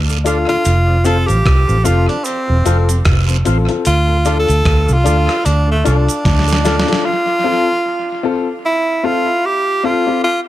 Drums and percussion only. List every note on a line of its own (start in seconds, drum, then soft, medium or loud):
0.09 cabasa medium
0.26 closed hi-hat medium
0.26 cabasa medium
0.49 closed hi-hat medium
0.65 closed hi-hat loud
0.65 cabasa medium
1.05 closed hi-hat medium
1.05 cabasa medium
1.28 closed hi-hat soft
1.28 cabasa medium
1.46 kick loud
1.46 cross-stick loud
1.46 closed hi-hat medium
1.69 cabasa soft
1.85 closed hi-hat medium
1.85 cabasa medium
2.09 closed hi-hat medium
2.25 closed hi-hat medium
2.25 cabasa medium
2.66 closed hi-hat medium
2.66 cabasa medium
2.89 closed hi-hat medium
2.89 cabasa medium
3.05 kick loud
3.05 cross-stick loud
3.05 closed hi-hat medium
3.05 long guiro medium
3.29 cabasa medium
3.45 closed hi-hat medium
3.45 cabasa medium
3.69 closed hi-hat medium
3.85 closed hi-hat loud
3.85 cabasa medium
4.25 closed hi-hat medium
4.25 cabasa medium
4.48 closed hi-hat soft
4.48 cabasa medium
4.65 kick loud
4.65 cross-stick loud
4.65 closed hi-hat medium
4.89 cabasa soft
5.06 closed hi-hat medium
5.06 cabasa medium
5.29 cross-stick medium
5.29 closed hi-hat soft
5.45 closed hi-hat medium
5.45 cabasa medium
5.85 closed hi-hat medium
5.85 cabasa medium
6.08 closed hi-hat medium
6.08 cabasa medium
6.25 kick loud
6.25 snare medium
6.25 closed hi-hat medium
6.25 long guiro medium
6.39 snare medium
6.48 cabasa medium
6.53 snare medium
6.65 snare medium
6.65 closed hi-hat medium
6.65 cabasa medium
6.80 snare loud
6.88 closed hi-hat medium
6.93 snare medium